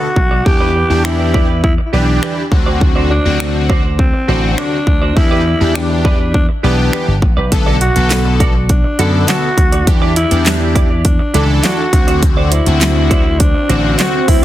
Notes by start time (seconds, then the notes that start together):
Already playing: F#4
0.02 muted clean electric guitar stroke
0.16 B1, muted clean electric guitar stroke, kick
0.31 F#4 A4 D5
0.46 E2 E3 D4 G4, muted clean electric guitar stroke, kick
0.60 G4 B4 D5
0.75 G4 B4 D5
0.90 E2 E3 D4 G4, muted clean electric guitar stroke
1.05 E4, finger snap, muted clean electric guitar stroke
1.19 muted clean electric guitar stroke
1.34 G4 B4 D5, kick
1.49 G4 B4 D5
1.64 E4, kick
1.78 muted clean electric guitar stroke
1.86 E4
1.93 B1 E3 D4 G4 B4 D5
2.08 muted clean electric guitar stroke
2.22 G4 B4 D5, finger snap
2.37 muted clean electric guitar stroke
2.52 D2 D3 C4 F#4, muted clean electric guitar stroke, kick
2.66 F#4 C5 D5
2.81 D2, muted clean electric guitar stroke, kick
2.96 F#4 C5 D5
3.10 D4 F#4 C5 D5
3.25 D2 D3 C4 F#4, muted clean electric guitar stroke
3.40 finger snap, muted clean electric guitar stroke
3.55 muted clean electric guitar stroke
3.69 F#4 C5 D5, kick
3.84 F#4 C5 D5
3.99 C4, kick
4.14 muted clean electric guitar stroke
4.28 A1 D3 C4 F#4 C5 D5
4.43 muted clean electric guitar stroke
4.58 D4 F#4 C5 D5, finger snap
4.72 muted clean electric guitar stroke
4.87 D2, muted clean electric guitar stroke, kick
5.02 F#4 C5 D5
5.16 E2 E3 D4 E4 G4, muted clean electric guitar stroke, kick
5.31 G4 B4 D5
5.46 G4 B4 D5
5.61 E2 E3 D4 G4, muted clean electric guitar stroke
5.75 D4, finger snap, muted clean electric guitar stroke
5.90 muted clean electric guitar stroke
6.04 G4 B4 D5, kick
6.19 G4 B4 D5
6.34 D4, kick
6.49 muted clean electric guitar stroke
6.63 B1 E3 B3 D4 G4 B4 D5
6.78 muted clean electric guitar stroke
6.93 G4 B4 D5, finger snap
7.08 G1, muted clean electric guitar stroke
7.22 A1, muted clean electric guitar stroke, kick
7.37 B1 G4 B4 D5
7.52 B1 D3 B3 A4, kick, closed hi-hat
7.66 F#4 A4 D5
7.81 F#4 A4 D5, closed hi-hat
7.96 B1 D3 B3 A4, muted clean electric guitar stroke, closed hi-hat
8.11 muted clean electric guitar stroke, snare, clap, closed hi-hat
8.25 muted clean electric guitar stroke
8.40 F#4 A4 D5, kick, closed hi-hat
8.55 F#4 A4 D5
8.69 D4, kick, closed hi-hat
8.84 muted clean electric guitar stroke
8.99 F#2 D3 B3 F#4 A4 D5, closed hi-hat
9.14 muted clean electric guitar stroke
9.28 F#4 A4 D5, snare, clap, closed hi-hat
9.43 muted clean electric guitar stroke
9.58 D2, muted clean electric guitar stroke, kick, closed hi-hat
9.72 F#4 A4 D5, closed hi-hat
9.87 E2 E3 D4 G4, kick, closed hi-hat
10.02 E4 G4 D5
10.16 E4 G4 D5, closed hi-hat
10.31 E2 E3 D4 G4, closed hi-hat
10.46 muted clean electric guitar stroke, snare, clap, closed hi-hat
10.61 muted clean electric guitar stroke
10.75 E4 G4 D5, kick, closed hi-hat
10.90 E4 G4 D5
11.05 D4, kick, closed hi-hat
11.19 muted clean electric guitar stroke
11.34 C#2 E3 D4 E4 G4 A4 D5, closed hi-hat
11.49 muted clean electric guitar stroke
11.63 E4 F#4 G4 D5, snare, clap, closed hi-hat
11.78 muted clean electric guitar stroke
11.93 D2 D3 C4 F#4, muted clean electric guitar stroke, kick, closed hi-hat
12.07 F#4 C5 D5, closed hi-hat
12.22 D2, muted clean electric guitar stroke, kick, closed hi-hat, swell
12.37 F#4 C5 D5
12.51 E4 F#4 C5 D5, closed hi-hat
12.66 D2 D3 C4 F#4, closed hi-hat
12.81 muted clean electric guitar stroke, snare, clap, closed hi-hat
12.96 muted clean electric guitar stroke
13.10 F#4 C5 D5, kick, closed hi-hat
13.25 F#4 C5 D5
13.40 D4, kick, closed hi-hat
13.55 muted clean electric guitar stroke
13.69 A1 D3 C4 F#4 C5 D5, closed hi-hat
13.84 muted clean electric guitar stroke
13.99 F#4 C5 D5, snare, clap, closed hi-hat
14.13 muted clean electric guitar stroke
14.28 D2 E4, muted clean electric guitar stroke, kick, open hi-hat